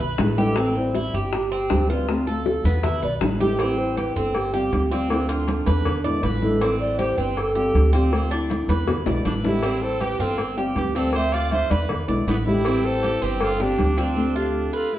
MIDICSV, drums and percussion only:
0, 0, Header, 1, 2, 480
1, 0, Start_track
1, 0, Key_signature, 0, "minor"
1, 0, Tempo, 377596
1, 728, Time_signature, 4, 2, 24, 8
1, 19051, End_track
2, 0, Start_track
2, 0, Title_t, "Drums"
2, 0, Note_on_c, 9, 63, 33
2, 0, Note_on_c, 9, 64, 75
2, 126, Note_off_c, 9, 63, 0
2, 126, Note_off_c, 9, 64, 0
2, 232, Note_on_c, 9, 60, 76
2, 232, Note_on_c, 9, 61, 88
2, 244, Note_on_c, 9, 63, 89
2, 359, Note_off_c, 9, 60, 0
2, 359, Note_off_c, 9, 61, 0
2, 371, Note_off_c, 9, 63, 0
2, 489, Note_on_c, 9, 63, 80
2, 616, Note_off_c, 9, 63, 0
2, 709, Note_on_c, 9, 60, 77
2, 731, Note_on_c, 9, 63, 32
2, 836, Note_off_c, 9, 60, 0
2, 858, Note_off_c, 9, 63, 0
2, 970, Note_on_c, 9, 63, 36
2, 1097, Note_off_c, 9, 63, 0
2, 1201, Note_on_c, 9, 60, 59
2, 1210, Note_on_c, 9, 63, 61
2, 1328, Note_off_c, 9, 60, 0
2, 1337, Note_off_c, 9, 63, 0
2, 1454, Note_on_c, 9, 63, 34
2, 1581, Note_off_c, 9, 63, 0
2, 1686, Note_on_c, 9, 60, 70
2, 1699, Note_on_c, 9, 63, 39
2, 1813, Note_off_c, 9, 60, 0
2, 1826, Note_off_c, 9, 63, 0
2, 1937, Note_on_c, 9, 63, 37
2, 2064, Note_off_c, 9, 63, 0
2, 2161, Note_on_c, 9, 60, 74
2, 2161, Note_on_c, 9, 61, 87
2, 2169, Note_on_c, 9, 63, 98
2, 2288, Note_off_c, 9, 60, 0
2, 2288, Note_off_c, 9, 61, 0
2, 2296, Note_off_c, 9, 63, 0
2, 2409, Note_on_c, 9, 63, 35
2, 2536, Note_off_c, 9, 63, 0
2, 2652, Note_on_c, 9, 60, 70
2, 2652, Note_on_c, 9, 63, 34
2, 2779, Note_off_c, 9, 60, 0
2, 2779, Note_off_c, 9, 63, 0
2, 2889, Note_on_c, 9, 60, 38
2, 2894, Note_on_c, 9, 63, 32
2, 3016, Note_off_c, 9, 60, 0
2, 3021, Note_off_c, 9, 63, 0
2, 3124, Note_on_c, 9, 60, 57
2, 3128, Note_on_c, 9, 63, 85
2, 3251, Note_off_c, 9, 60, 0
2, 3255, Note_off_c, 9, 63, 0
2, 3372, Note_on_c, 9, 60, 34
2, 3372, Note_on_c, 9, 63, 84
2, 3499, Note_off_c, 9, 60, 0
2, 3499, Note_off_c, 9, 63, 0
2, 3603, Note_on_c, 9, 60, 74
2, 3614, Note_on_c, 9, 63, 40
2, 3614, Note_on_c, 9, 64, 89
2, 3730, Note_off_c, 9, 60, 0
2, 3741, Note_off_c, 9, 63, 0
2, 3741, Note_off_c, 9, 64, 0
2, 3841, Note_on_c, 9, 60, 37
2, 3856, Note_on_c, 9, 63, 38
2, 3856, Note_on_c, 9, 64, 76
2, 3968, Note_off_c, 9, 60, 0
2, 3983, Note_off_c, 9, 63, 0
2, 3983, Note_off_c, 9, 64, 0
2, 4082, Note_on_c, 9, 60, 77
2, 4082, Note_on_c, 9, 61, 83
2, 4100, Note_on_c, 9, 63, 94
2, 4209, Note_off_c, 9, 60, 0
2, 4209, Note_off_c, 9, 61, 0
2, 4228, Note_off_c, 9, 63, 0
2, 4339, Note_on_c, 9, 63, 83
2, 4466, Note_off_c, 9, 63, 0
2, 4561, Note_on_c, 9, 56, 109
2, 4573, Note_on_c, 9, 63, 34
2, 4689, Note_off_c, 9, 56, 0
2, 4700, Note_off_c, 9, 63, 0
2, 4816, Note_on_c, 9, 63, 29
2, 4943, Note_off_c, 9, 63, 0
2, 5054, Note_on_c, 9, 56, 71
2, 5054, Note_on_c, 9, 63, 56
2, 5181, Note_off_c, 9, 56, 0
2, 5182, Note_off_c, 9, 63, 0
2, 5286, Note_on_c, 9, 63, 35
2, 5413, Note_off_c, 9, 63, 0
2, 5524, Note_on_c, 9, 56, 108
2, 5536, Note_on_c, 9, 63, 36
2, 5652, Note_off_c, 9, 56, 0
2, 5663, Note_off_c, 9, 63, 0
2, 5773, Note_on_c, 9, 63, 36
2, 5900, Note_off_c, 9, 63, 0
2, 6009, Note_on_c, 9, 56, 73
2, 6011, Note_on_c, 9, 63, 86
2, 6136, Note_off_c, 9, 56, 0
2, 6138, Note_off_c, 9, 63, 0
2, 6252, Note_on_c, 9, 63, 35
2, 6254, Note_on_c, 9, 56, 65
2, 6379, Note_off_c, 9, 63, 0
2, 6381, Note_off_c, 9, 56, 0
2, 6488, Note_on_c, 9, 56, 113
2, 6490, Note_on_c, 9, 63, 34
2, 6615, Note_off_c, 9, 56, 0
2, 6618, Note_off_c, 9, 63, 0
2, 6723, Note_on_c, 9, 56, 77
2, 6732, Note_on_c, 9, 63, 33
2, 6850, Note_off_c, 9, 56, 0
2, 6859, Note_off_c, 9, 63, 0
2, 6962, Note_on_c, 9, 56, 70
2, 6972, Note_on_c, 9, 63, 94
2, 7089, Note_off_c, 9, 56, 0
2, 7099, Note_off_c, 9, 63, 0
2, 7202, Note_on_c, 9, 56, 64
2, 7211, Note_on_c, 9, 63, 103
2, 7329, Note_off_c, 9, 56, 0
2, 7338, Note_off_c, 9, 63, 0
2, 7442, Note_on_c, 9, 56, 109
2, 7448, Note_on_c, 9, 63, 33
2, 7448, Note_on_c, 9, 64, 93
2, 7569, Note_off_c, 9, 56, 0
2, 7575, Note_off_c, 9, 63, 0
2, 7575, Note_off_c, 9, 64, 0
2, 7688, Note_on_c, 9, 63, 36
2, 7815, Note_off_c, 9, 63, 0
2, 7920, Note_on_c, 9, 56, 76
2, 7922, Note_on_c, 9, 63, 90
2, 8047, Note_off_c, 9, 56, 0
2, 8049, Note_off_c, 9, 63, 0
2, 8164, Note_on_c, 9, 63, 83
2, 8291, Note_off_c, 9, 63, 0
2, 8408, Note_on_c, 9, 56, 109
2, 8412, Note_on_c, 9, 63, 36
2, 8535, Note_off_c, 9, 56, 0
2, 8539, Note_off_c, 9, 63, 0
2, 8647, Note_on_c, 9, 63, 33
2, 8774, Note_off_c, 9, 63, 0
2, 8888, Note_on_c, 9, 56, 69
2, 8891, Note_on_c, 9, 63, 56
2, 9015, Note_off_c, 9, 56, 0
2, 9018, Note_off_c, 9, 63, 0
2, 9135, Note_on_c, 9, 63, 32
2, 9262, Note_off_c, 9, 63, 0
2, 9372, Note_on_c, 9, 56, 101
2, 9373, Note_on_c, 9, 63, 34
2, 9500, Note_off_c, 9, 56, 0
2, 9500, Note_off_c, 9, 63, 0
2, 9614, Note_on_c, 9, 63, 34
2, 9741, Note_off_c, 9, 63, 0
2, 9850, Note_on_c, 9, 63, 89
2, 9857, Note_on_c, 9, 56, 69
2, 9977, Note_off_c, 9, 63, 0
2, 9984, Note_off_c, 9, 56, 0
2, 10090, Note_on_c, 9, 63, 33
2, 10092, Note_on_c, 9, 56, 63
2, 10217, Note_off_c, 9, 63, 0
2, 10219, Note_off_c, 9, 56, 0
2, 10333, Note_on_c, 9, 56, 117
2, 10335, Note_on_c, 9, 63, 36
2, 10460, Note_off_c, 9, 56, 0
2, 10463, Note_off_c, 9, 63, 0
2, 10569, Note_on_c, 9, 56, 73
2, 10571, Note_on_c, 9, 63, 34
2, 10696, Note_off_c, 9, 56, 0
2, 10698, Note_off_c, 9, 63, 0
2, 10804, Note_on_c, 9, 56, 70
2, 10818, Note_on_c, 9, 63, 96
2, 10931, Note_off_c, 9, 56, 0
2, 10945, Note_off_c, 9, 63, 0
2, 11046, Note_on_c, 9, 56, 67
2, 11059, Note_on_c, 9, 63, 89
2, 11173, Note_off_c, 9, 56, 0
2, 11186, Note_off_c, 9, 63, 0
2, 11282, Note_on_c, 9, 56, 101
2, 11282, Note_on_c, 9, 60, 75
2, 11293, Note_on_c, 9, 63, 33
2, 11293, Note_on_c, 9, 64, 86
2, 11409, Note_off_c, 9, 56, 0
2, 11409, Note_off_c, 9, 60, 0
2, 11420, Note_off_c, 9, 63, 0
2, 11420, Note_off_c, 9, 64, 0
2, 11519, Note_on_c, 9, 60, 95
2, 11530, Note_on_c, 9, 63, 38
2, 11530, Note_on_c, 9, 64, 72
2, 11646, Note_off_c, 9, 60, 0
2, 11657, Note_off_c, 9, 63, 0
2, 11657, Note_off_c, 9, 64, 0
2, 11761, Note_on_c, 9, 56, 76
2, 11771, Note_on_c, 9, 63, 91
2, 11888, Note_off_c, 9, 56, 0
2, 11898, Note_off_c, 9, 63, 0
2, 12007, Note_on_c, 9, 61, 66
2, 12012, Note_on_c, 9, 63, 83
2, 12134, Note_off_c, 9, 61, 0
2, 12139, Note_off_c, 9, 63, 0
2, 12237, Note_on_c, 9, 56, 111
2, 12364, Note_off_c, 9, 56, 0
2, 12485, Note_on_c, 9, 63, 32
2, 12613, Note_off_c, 9, 63, 0
2, 12720, Note_on_c, 9, 56, 71
2, 12729, Note_on_c, 9, 63, 58
2, 12848, Note_off_c, 9, 56, 0
2, 12856, Note_off_c, 9, 63, 0
2, 12962, Note_on_c, 9, 63, 37
2, 13089, Note_off_c, 9, 63, 0
2, 13196, Note_on_c, 9, 56, 99
2, 13204, Note_on_c, 9, 63, 36
2, 13323, Note_off_c, 9, 56, 0
2, 13331, Note_off_c, 9, 63, 0
2, 13441, Note_on_c, 9, 63, 36
2, 13568, Note_off_c, 9, 63, 0
2, 13677, Note_on_c, 9, 56, 70
2, 13680, Note_on_c, 9, 63, 87
2, 13804, Note_off_c, 9, 56, 0
2, 13807, Note_off_c, 9, 63, 0
2, 13921, Note_on_c, 9, 56, 62
2, 14048, Note_off_c, 9, 56, 0
2, 14146, Note_on_c, 9, 56, 106
2, 14164, Note_on_c, 9, 63, 34
2, 14273, Note_off_c, 9, 56, 0
2, 14291, Note_off_c, 9, 63, 0
2, 14390, Note_on_c, 9, 56, 77
2, 14408, Note_on_c, 9, 63, 35
2, 14517, Note_off_c, 9, 56, 0
2, 14535, Note_off_c, 9, 63, 0
2, 14635, Note_on_c, 9, 56, 69
2, 14648, Note_on_c, 9, 63, 82
2, 14762, Note_off_c, 9, 56, 0
2, 14775, Note_off_c, 9, 63, 0
2, 14877, Note_on_c, 9, 56, 69
2, 14887, Note_on_c, 9, 63, 93
2, 15004, Note_off_c, 9, 56, 0
2, 15014, Note_off_c, 9, 63, 0
2, 15116, Note_on_c, 9, 56, 108
2, 15129, Note_on_c, 9, 63, 34
2, 15129, Note_on_c, 9, 64, 86
2, 15243, Note_off_c, 9, 56, 0
2, 15257, Note_off_c, 9, 63, 0
2, 15257, Note_off_c, 9, 64, 0
2, 15377, Note_on_c, 9, 63, 39
2, 15504, Note_off_c, 9, 63, 0
2, 15608, Note_on_c, 9, 56, 73
2, 15617, Note_on_c, 9, 63, 86
2, 15735, Note_off_c, 9, 56, 0
2, 15744, Note_off_c, 9, 63, 0
2, 15857, Note_on_c, 9, 63, 85
2, 15984, Note_off_c, 9, 63, 0
2, 16079, Note_on_c, 9, 56, 117
2, 16097, Note_on_c, 9, 63, 35
2, 16206, Note_off_c, 9, 56, 0
2, 16225, Note_off_c, 9, 63, 0
2, 16337, Note_on_c, 9, 63, 34
2, 16464, Note_off_c, 9, 63, 0
2, 16558, Note_on_c, 9, 56, 70
2, 16581, Note_on_c, 9, 63, 54
2, 16686, Note_off_c, 9, 56, 0
2, 16708, Note_off_c, 9, 63, 0
2, 16820, Note_on_c, 9, 63, 35
2, 16947, Note_off_c, 9, 63, 0
2, 17041, Note_on_c, 9, 56, 113
2, 17058, Note_on_c, 9, 63, 35
2, 17168, Note_off_c, 9, 56, 0
2, 17185, Note_off_c, 9, 63, 0
2, 17291, Note_on_c, 9, 63, 39
2, 17418, Note_off_c, 9, 63, 0
2, 17523, Note_on_c, 9, 56, 67
2, 17529, Note_on_c, 9, 63, 92
2, 17650, Note_off_c, 9, 56, 0
2, 17656, Note_off_c, 9, 63, 0
2, 17763, Note_on_c, 9, 56, 62
2, 17769, Note_on_c, 9, 63, 34
2, 17890, Note_off_c, 9, 56, 0
2, 17896, Note_off_c, 9, 63, 0
2, 19051, End_track
0, 0, End_of_file